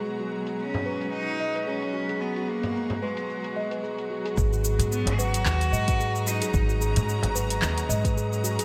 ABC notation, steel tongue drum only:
X:1
M:4/4
L:1/16
Q:"Swing 16ths" 1/4=111
K:G#m
V:1 name="Steel tongue drum"
G F G4 B z3 d B G2 F G- | G F G4 B z3 d B G2 F G | z F G4 B z3 d B G2 F G- | G F G4 B z3 d B G2 F G |]